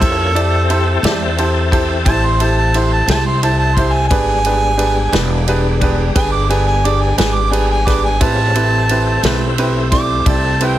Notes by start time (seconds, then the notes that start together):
Already playing: A4
0.00 F2 A#3 C#4 E4 F4 G4 A4 C5 G#5, kick, ride
0.35 C4 E4 G4 A4 D5, ride
0.70 E4 G4 A4 C5, ride
1.03 E2 E4 G4 A4 D5, snare, ride
1.38 E4 G4 A4 C5, ride
1.71 E4 G4 A4 C5, kick, ride
2.05 A1 E4 G4 A4 C5 A5, kick, ride
2.26 C6
2.40 E4 G4 A4 C5 A5, ride
2.58 A5
2.74 E4 G4 A4 C5 C6, ride
2.93 A5
3.08 C2 E4 G4 A4 C5 A5, snare, ride
3.26 C6
3.43 E4 G4 A4 C5 A5, ride
3.59 A5
3.76 E4 G4 A4 C5 C6, kick, ride
3.92 G#5
4.08 G#1 D4 G4 G#4 B4 G#5, kick, ride
4.13 G3 G#3 B3 D4
4.45 D4 G4 G#4 B4, ride
4.77 D4 G4 G#4 B4, ride
5.12 E1 D4 G4 G#4 B4, snare, ride
5.48 D4 G4 G#4 B4, ride
5.81 D4 G4 G#4 B4, kick, ride
6.15 G1 D4 G4 G#4 B4 G#5, kick, ride
6.32 D6
6.49 D4 G4 G#4 B4 G#5, ride
6.67 G#5
6.85 D4 G4 G#4 D5 D6, ride
7.01 G#5
7.17 G#1 D4 G4 G#4 B4 G#5, snare, ride
7.35 D6
7.51 D4 G4 G#4 B4 G#5, ride
7.71 G#5
7.86 D4 G4 G#4 B4 D6, kick, snare, ride
8.04 G#5
8.20 A1 G#3 C4 C#4 E4 F4 G4 B4 A5, kick, ride
8.54 A3 C4 E4 G4 B4, ride
8.89 C4 E4 G4 B4, ride
9.23 B1 C4 E4 G4 B4, snare, ride
9.58 C4 E4 G4 B4, ride
9.92 C4 E4 G4 D5 D6, kick, snare, ride
10.26 C2 C4 E4 G4 D5 A5, kick, ride
10.60 C4 E4 G4 B4 G5, ride